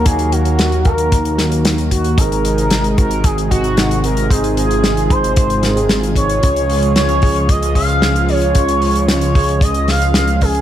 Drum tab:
HH |xxxxxxxxxxxxxxxx|xxxxxxxxxxxxxxxx|xxxxxxxxxxxxxxxx|xxoxxxoxxxoxxxox|
SD |----o-----o-o---|----o-------o---|----o-----o-o---|----o-------o---|
BD |o-----o-o-----o-|o-----o-o-o-----|o-----o-o-----o-|o-----o-o-o-----|

HH |xxoxxxoxxxoxxxox|
SD |----o-----o-o---|
BD |o-----o-o-----o-|